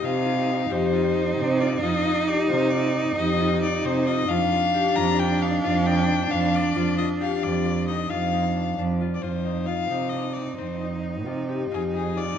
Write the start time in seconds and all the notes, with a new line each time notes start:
Already playing: D4 D#4 G4
0.02 C3 F4 F5
0.25 F4
0.47 D#4
0.70 F2 G4 C5
0.93 F4
1.15 D#4
1.37 C3 D#4
1.60 F4 D5
1.82 F2 F4 D#5
2.06 F4
2.28 G4 D5
2.49 C3 F4 C5
2.70 F4 D5
2.95 D#4
3.16 F2 G4 D#5
3.40 F4
3.62 D#4 D5
3.85 C3 D#4 C5
4.06 F4 D#5
4.28 F2 D4 F4 F5
4.52 F4
4.74 G4
4.96 F2 F4 A#5
5.19 F4 G5
5.42 D#4 F5
5.63 F2 F4 F5
5.86 D#4 G5
6.09 D4
6.31 F2 D4 F5
6.54 F4 D5
6.76 F2 F4
6.98 F4 D#5
7.21 G4 F5
7.43 F2 F4 D5
7.65 F4
7.87 D#4 D#5
8.10 F2 F4 F5
8.33 D#4
8.56 D4
8.77 F2 D4
9.01 F4
9.14 D5
9.22 F2 D#4 F4 C5
9.45 D#4
9.66 F4 F5
9.90 C3 D#4
10.09 D4 D#5
10.33 C4 D5
10.56 F2 C4 C5
10.81 D#4
11.03 D#4
11.25 C3 F4
11.49 G4
11.71 F2 F4 G#4
11.94 D#4 G#4
12.17 F4 D5